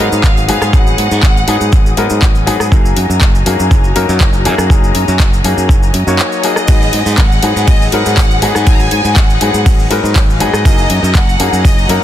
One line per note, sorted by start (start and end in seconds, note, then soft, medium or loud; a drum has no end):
0.00 0.46 F#3 medium
0.00 0.46 B3 medium
0.00 0.46 D#4 medium
0.00 0.72 F#4 medium
0.00 2.68 G#4 medium
0.00 0.46 A#4 loud
0.00 2.68 D#5 medium
0.00 2.68 D#6 medium
0.07 0.14 F#5 medium
0.12 0.22 G#2 loud
0.12 0.48 F5 loud
0.12 maracas medium
0.23 0.50 G#1 loud
0.23 kick loud
0.23 clap loud
0.23 maracas medium
0.37 maracas soft
0.48 0.59 G#2 loud
0.48 0.70 F#3 loud
0.48 0.71 B3 medium
0.48 0.71 D#4 medium
0.48 0.71 G#4 loud
0.48 0.72 F5 loud
0.48 open hi-hat loud
0.61 0.71 G#2 loud
0.61 cross-stick medium
0.61 maracas medium
0.72 0.94 G#1 loud
0.72 1.45 B3 medium
0.72 1.45 D#4 medium
0.72 1.46 G#4 medium
0.72 2.23 F#5 loud
0.72 6.64 G#5 medium
0.72 kick loud
0.72 maracas medium
0.87 maracas soft
0.98 1.09 G#2 medium
0.98 open hi-hat loud
1.11 1.21 G#2 loud
1.11 maracas medium
1.23 1.43 G#1 medium
1.23 kick loud
1.23 clap loud
1.23 maracas medium
1.37 maracas soft
1.47 1.59 G#2 loud
1.47 1.95 F#3 medium
1.47 1.95 B3 medium
1.47 1.95 D#4 medium
1.47 1.95 G#4 medium
1.47 open hi-hat loud
1.61 1.70 G#2 medium
1.61 maracas medium
1.72 1.93 G#1 loud
1.72 kick loud
1.72 maracas medium
1.86 maracas soft
1.97 2.08 G#2 loud
1.97 2.44 F#3 medium
1.97 2.44 B3 medium
1.97 2.44 D#4 medium
1.97 2.45 A#4 loud
1.97 open hi-hat loud
2.10 2.20 G#2 loud
2.10 maracas medium
2.22 2.49 G#1 loud
2.22 kick loud
2.22 clap loud
2.22 maracas medium
2.35 maracas soft
2.46 2.58 G#2 loud
2.46 2.69 F#3 loud
2.46 2.69 B3 medium
2.46 2.69 D#4 medium
2.46 2.69 G#4 loud
2.46 open hi-hat loud
2.60 2.70 G#2 loud
2.60 cross-stick medium
2.60 maracas medium
2.70 2.92 F#1 loud
2.70 3.43 F#3 medium
2.70 3.43 A#3 medium
2.70 3.43 D#4 medium
2.70 6.65 F#4 medium
2.70 3.44 G#4 medium
2.70 12.04 D#5 medium
2.70 6.65 A#5 medium
2.70 kick loud
2.70 maracas medium
2.85 maracas soft
2.96 3.07 F#2 medium
2.96 open hi-hat loud
3.10 3.19 F#2 loud
3.10 maracas medium
3.21 3.42 F#1 medium
3.21 kick loud
3.21 clap loud
3.21 maracas medium
3.35 maracas soft
3.46 3.57 F#2 medium
3.46 3.93 F#3 medium
3.46 3.94 A#3 medium
3.46 3.94 D#4 medium
3.46 3.94 G#4 medium
3.46 open hi-hat loud
3.60 3.69 F#2 medium
3.60 maracas medium
3.71 3.91 F#1 loud
3.71 kick loud
3.71 maracas medium
3.84 maracas soft
3.95 4.06 F#2 loud
3.95 4.42 F#3 medium
3.95 4.42 A#3 medium
3.95 4.43 D#4 medium
3.95 4.43 A#4 loud
3.95 open hi-hat loud
4.09 4.19 F#2 loud
4.09 maracas medium
4.20 4.47 F#1 loud
4.20 kick loud
4.20 clap loud
4.20 maracas medium
4.33 maracas soft
4.45 4.56 F#2 loud
4.45 4.67 F#3 loud
4.45 4.67 A#3 medium
4.45 4.68 D#4 medium
4.45 4.68 G#4 loud
4.45 open hi-hat loud
4.58 4.68 F#2 loud
4.58 cross-stick medium
4.58 maracas medium
4.69 4.91 F#1 loud
4.69 5.41 F#3 medium
4.69 5.42 A#3 medium
4.69 5.42 D#4 medium
4.69 5.42 G#4 medium
4.69 kick loud
4.69 maracas medium
4.84 maracas soft
4.95 5.06 F#2 medium
4.95 open hi-hat loud
5.08 5.18 F#2 loud
5.08 maracas medium
5.20 5.40 F#1 medium
5.20 kick loud
5.20 clap loud
5.20 maracas medium
5.33 maracas soft
5.44 5.55 F#2 loud
5.44 5.92 F#3 medium
5.44 5.92 A#3 medium
5.44 5.92 D#4 medium
5.44 5.92 G#4 medium
5.44 open hi-hat loud
5.57 5.67 F#2 medium
5.57 maracas medium
5.69 5.90 F#1 loud
5.69 kick loud
5.69 maracas medium
5.83 maracas soft
5.94 6.05 F#2 medium
5.94 open hi-hat loud
6.07 6.19 F#2 medium
6.07 6.41 F#3 medium
6.07 6.41 A#3 medium
6.07 6.41 D#4 medium
6.07 6.41 C#5 loud
6.07 maracas medium
6.19 6.42 C#5 medium
6.19 clap loud
6.19 maracas medium
6.32 maracas soft
6.43 6.66 F#3 medium
6.43 6.66 A#3 medium
6.43 6.66 D#4 medium
6.43 6.66 G#4 loud
6.43 7.18 D#5 loud
6.43 open hi-hat loud
6.56 cross-stick medium
6.56 maracas medium
6.67 6.89 G#1 loud
6.67 7.40 F#3 medium
6.67 7.40 B3 medium
6.67 7.41 D#4 medium
6.67 10.61 G#4 medium
6.67 7.41 G#4 medium
6.67 10.62 F#5 medium
6.67 10.62 G#5 medium
6.67 kick loud
6.67 ride medium
6.67 maracas medium
6.82 maracas soft
6.93 7.04 G#2 medium
6.93 open hi-hat loud
7.06 7.16 G#2 loud
7.06 maracas medium
7.17 7.39 G#1 medium
7.17 7.67 F#5 loud
7.17 kick loud
7.17 clap loud
7.17 ride medium
7.17 maracas medium
7.32 maracas soft
7.43 7.54 G#2 loud
7.43 7.90 F#3 medium
7.43 7.90 B3 medium
7.43 7.90 D#4 medium
7.43 7.91 G#4 medium
7.43 open hi-hat loud
7.56 7.66 G#2 medium
7.56 maracas medium
7.67 7.88 G#1 loud
7.67 7.92 D#5 loud
7.67 kick loud
7.67 ride medium
7.67 maracas medium
7.82 maracas soft
7.91 8.03 G#2 loud
7.91 8.39 F#3 medium
7.91 8.39 B3 medium
7.91 8.39 D#4 medium
7.91 8.40 A#4 loud
7.91 8.62 F#5 loud
7.91 open hi-hat loud
8.06 8.15 G#2 loud
8.06 maracas medium
8.17 8.44 G#1 loud
8.17 kick loud
8.17 clap loud
8.17 ride medium
8.17 maracas medium
8.31 maracas soft
8.42 8.53 G#2 loud
8.42 8.64 F#3 loud
8.42 8.64 B3 medium
8.42 8.64 D#4 medium
8.42 8.64 G#4 loud
8.42 open hi-hat loud
8.55 8.65 G#2 loud
8.55 cross-stick medium
8.55 maracas medium
8.65 8.87 G#1 loud
8.65 9.38 F#3 medium
8.65 9.38 B3 medium
8.65 9.39 D#4 medium
8.65 9.39 G#4 medium
8.65 8.74 G#5 loud
8.65 kick loud
8.65 ride medium
8.65 maracas medium
8.74 8.81 A#5 medium
8.80 9.16 G#5 loud
8.80 maracas soft
8.91 9.02 G#2 medium
8.91 open hi-hat loud
9.05 9.14 G#2 loud
9.05 maracas medium
9.16 9.37 G#1 medium
9.16 9.91 F#5 loud
9.16 kick loud
9.16 clap loud
9.16 ride medium
9.16 maracas medium
9.30 maracas soft
9.41 9.52 G#2 loud
9.41 9.89 F#3 medium
9.41 9.89 B3 medium
9.41 9.89 D#4 medium
9.41 9.89 G#4 medium
9.41 open hi-hat loud
9.54 9.64 G#2 medium
9.54 maracas medium
9.66 9.87 G#1 loud
9.66 kick loud
9.66 ride medium
9.66 maracas medium
9.79 maracas soft
9.90 10.01 G#2 loud
9.90 10.37 F#3 medium
9.90 10.38 B3 medium
9.90 10.38 D#4 medium
9.90 10.38 A#4 loud
9.90 open hi-hat loud
10.04 10.13 G#2 loud
10.04 maracas medium
10.16 10.42 G#1 loud
10.16 10.24 C#5 medium
10.16 kick loud
10.16 clap loud
10.16 ride medium
10.16 maracas medium
10.30 10.40 F5 medium
10.30 maracas soft
10.40 10.51 G#2 loud
10.40 10.62 F#3 loud
10.40 10.62 B3 medium
10.40 10.63 D#4 medium
10.40 10.63 G#4 loud
10.40 11.15 D#5 loud
10.40 open hi-hat loud
10.53 10.63 G#2 loud
10.53 cross-stick medium
10.53 maracas medium
10.65 10.86 F#1 loud
10.65 11.37 F#3 medium
10.65 11.37 A#3 medium
10.65 11.37 D#4 medium
10.65 12.04 F#4 medium
10.65 11.37 G#4 medium
10.65 12.04 G#5 medium
10.65 12.04 A#5 medium
10.65 kick loud
10.65 ride medium
10.65 maracas medium
10.78 maracas soft
10.90 11.01 F#2 medium
10.90 open hi-hat loud
11.03 11.12 F#2 loud
11.03 maracas medium
11.14 11.35 F#1 medium
11.14 11.64 F#5 loud
11.14 kick loud
11.14 clap loud
11.14 ride medium
11.14 maracas medium
11.29 maracas soft
11.39 11.50 F#2 loud
11.39 11.87 F#3 medium
11.39 11.87 A#3 medium
11.39 11.87 D#4 medium
11.39 11.87 G#4 loud
11.39 open hi-hat loud
11.53 11.62 F#2 medium
11.53 maracas medium
11.64 11.85 F#1 loud
11.64 11.89 D#5 loud
11.64 kick loud
11.64 ride medium
11.64 maracas medium
11.78 maracas soft
11.89 12.00 F#2 loud
11.89 12.04 F#3 medium
11.89 12.04 A#3 medium
11.89 12.04 D#4 medium
11.89 12.04 A#4 loud
11.89 12.04 F#5 loud
11.89 open hi-hat loud